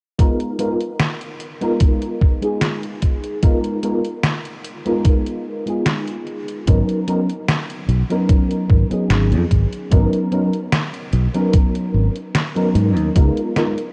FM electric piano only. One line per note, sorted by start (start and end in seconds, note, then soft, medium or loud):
0.18 0.54 G#3 medium
0.18 0.55 B3 medium
0.18 0.55 D#4 medium
0.18 0.55 F4 medium
0.18 0.55 A#4 medium
0.58 0.77 G#3 medium
0.58 0.77 B3 medium
0.58 0.77 D#4 medium
0.58 0.77 F4 medium
0.58 0.77 A#4 medium
1.61 2.37 G#3 medium
1.61 2.37 B3 medium
1.61 2.38 D#4 medium
1.61 2.38 F4 medium
1.61 2.38 A#4 medium
2.41 3.38 G#3 medium
2.41 3.38 B3 medium
2.41 3.38 D#4 medium
2.41 3.39 F4 medium
2.41 3.39 G#4 medium
3.42 3.79 G#3 medium
3.42 3.79 B3 medium
3.42 3.79 D#4 medium
3.42 3.79 F4 medium
3.42 3.79 A#4 medium
3.83 4.01 G#3 medium
3.83 4.01 B3 medium
3.83 4.01 D#4 medium
3.83 4.01 F4 medium
3.83 4.02 A#4 medium
4.85 5.62 G#3 medium
4.85 5.62 B3 medium
4.85 5.62 D#4 medium
4.85 5.62 F4 medium
4.85 5.62 A#4 medium
5.66 6.62 G#3 medium
5.66 6.62 B3 medium
5.66 6.63 D#4 medium
5.66 6.63 F4 medium
5.66 6.64 G#4 medium
6.67 7.03 F#3 medium
6.67 7.03 B3 medium
6.67 7.03 C#4 medium
6.67 7.03 D#4 medium
6.67 7.04 A#4 medium
7.07 7.25 F#3 medium
7.07 7.25 B3 medium
7.07 7.26 C#4 medium
7.07 7.26 D#4 medium
7.07 7.26 A#4 medium
8.10 8.86 F#3 medium
8.10 8.86 B3 medium
8.10 8.86 C#4 medium
8.10 8.87 D#4 medium
8.10 8.87 A#4 medium
8.90 9.86 F#3 medium
8.90 9.87 B3 medium
8.90 9.87 C#4 medium
8.90 9.88 D#4 medium
8.90 9.88 G#4 medium
9.90 10.27 F#3 medium
9.90 10.27 B3 medium
9.90 10.27 C#4 medium
9.90 10.28 D#4 medium
9.90 10.28 A#4 medium
10.31 10.49 F#3 medium
10.31 10.50 B3 medium
10.31 10.50 C#4 medium
10.31 10.50 D#4 medium
10.31 10.50 A#4 loud
11.34 12.10 F#3 medium
11.34 12.10 B3 medium
11.34 12.11 C#4 medium
11.34 12.11 D#4 medium
11.34 12.11 A#4 medium
12.55 13.11 F#3 medium
12.55 13.11 B3 medium
12.55 13.11 C#4 medium
12.55 13.11 D#4 medium
12.55 13.12 A#4 medium
13.15 13.51 G#3 medium
13.15 13.52 B3 medium
13.15 13.52 D#4 medium
13.15 13.52 F4 medium
13.15 13.52 A#4 medium
13.56 13.74 G#3 medium
13.56 13.74 B3 medium
13.56 13.74 D#4 medium
13.56 13.74 F4 medium
13.56 13.74 A#4 medium